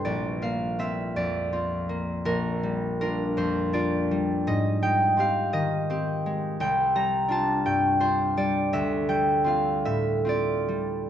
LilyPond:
<<
  \new Staff \with { instrumentName = "Harp" } { \time 3/4 \key g \major \tempo 4 = 82 <c'' d''>8 f''8 e''8 d''4. | bes'4 bes'8 c''8 d''4 | \key d \dorian ees''8 g''8 f''8 ees''4. | g''8 bes''8 a''8 g''8 c''8 d''8 |
e''8 g''8 f''8 e''8 d''4 | }
  \new Staff \with { instrumentName = "Harp" } { \time 3/4 \key g \major bes,,8 bes8 <c' f'>8 f,8 <c' f'>8 bes8 | bes,,8 g8 <d' f'>8 f,8 <d' f'>8 g8 | \key d \dorian aes,8 aes8 <c' g'>8 ees8 <c' g'>8 aes8 | c,8 g8 <d' f'>8 g,8 <d' f'>8 g8 |
d,8 g8 <c' f'>8 a,8 <c' f'>8 g8 | }
>>